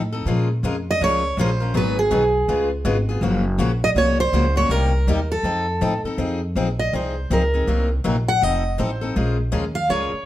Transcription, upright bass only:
0.00 0.25 A2 medium
0.26 0.62 A#2 medium
0.63 0.99 F2 medium
1.01 1.36 C#2 medium
1.37 1.73 A#1 medium
1.74 2.10 G#1 medium
2.11 2.47 B1 medium
2.48 2.84 C#2 medium
2.85 3.20 G#1 medium
3.21 3.57 F#1 medium
3.58 3.94 A#1 medium
3.95 4.31 C2 medium
4.32 4.69 C#2 medium
4.69 5.06 C2 medium
5.07 5.42 D#2 medium
5.43 5.80 F2 medium
5.81 6.03 A2 medium
6.04 muted upright bass stroke soft
6.18 6.54 F2 medium
6.55 6.91 A#1 medium
6.93 7.29 C2 medium
7.30 7.66 C#2 medium
7.67 8.03 C2 medium
8.04 8.40 A#1 medium
8.42 8.77 F1 medium
8.79 9.14 A1 medium
9.16 9.52 A#1 medium
9.53 9.88 D#2 medium
9.89 10.11 C#2 medium
10.12 muted upright bass stroke soft

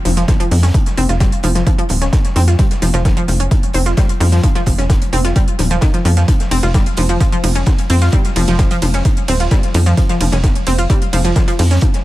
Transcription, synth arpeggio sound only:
0.05 0.11 F3 loud
0.17 0.25 F3 loud
0.28 0.37 F3 medium
0.40 0.45 F3 loud
0.51 0.57 F3 medium
0.63 0.69 C#4 medium
0.97 1.03 C4 loud
1.09 1.15 F4 medium
1.21 1.29 G3 medium
1.44 1.49 F3 loud
1.55 1.64 F3 loud
1.67 1.75 F3 medium
1.78 1.84 F3 loud
1.90 1.95 F3 medium
2.01 2.07 C#4 medium
2.36 2.42 C4 loud
2.48 2.53 F4 medium
2.59 2.67 G3 medium
2.82 2.88 F3 loud
2.94 3.02 F3 loud
3.05 3.14 F3 medium
3.17 3.22 F3 loud
3.28 3.34 F3 medium
3.40 3.45 C#4 medium
3.74 3.80 C4 loud
3.86 3.92 F4 medium
3.97 4.06 G3 medium
4.20 4.26 F3 loud
4.32 4.40 F3 loud
4.43 4.52 F3 medium
4.55 4.61 F3 loud
4.67 4.72 F3 medium
4.78 4.84 C#4 medium
5.13 5.18 C4 loud
5.25 5.30 F4 medium
5.36 5.44 G3 medium
5.59 5.65 F3 medium
5.71 5.76 F3 loud
5.82 5.85 D#3 loud
5.94 5.99 F3 medium
6.05 6.11 F3 loud
6.17 6.22 F3 medium
6.51 6.57 C4 loud
6.63 6.68 F4 medium
6.74 6.83 G3 medium
6.97 7.03 F3 loud
7.09 7.17 F3 loud
7.21 7.29 F3 medium
7.32 7.38 F3 loud
7.44 7.49 F3 medium
7.55 7.61 C#4 medium
7.90 7.95 C4 loud
8.02 8.07 F4 medium
8.13 8.21 G3 medium
8.36 8.42 F3 loud
8.48 8.56 F3 loud
8.59 8.68 F3 medium
8.71 8.76 F3 loud
8.82 8.88 F3 medium
8.94 8.99 C#4 medium
9.28 9.34 C4 loud
9.40 9.46 F4 medium
9.51 9.60 G3 medium
9.75 9.80 F3 loud
9.86 9.94 F3 loud
9.98 10.06 F3 medium
10.09 10.15 F3 loud
10.21 10.26 F3 medium
10.32 10.38 C#4 medium
10.67 10.72 C4 loud
10.79 10.84 F4 medium
10.90 10.98 G3 medium
11.13 11.19 F3 loud
11.25 11.33 F3 loud
11.36 11.45 F3 medium
11.48 11.53 F3 loud
11.59 11.65 F3 medium
11.71 11.76 C#4 medium

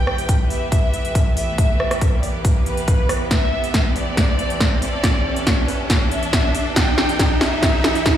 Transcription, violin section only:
0.00 0.42 G5 loud
0.50 1.28 E5 medium
1.37 2.15 E5 medium
2.23 2.45 D5 medium
2.66 3.23 B4 medium
3.31 3.87 E5 loud
3.96 4.74 D5 medium
4.82 5.60 D5 medium
5.68 5.90 B4 medium
6.11 6.68 E5 loud
6.76 7.33 G5 loud
7.41 8.17 E5 loud

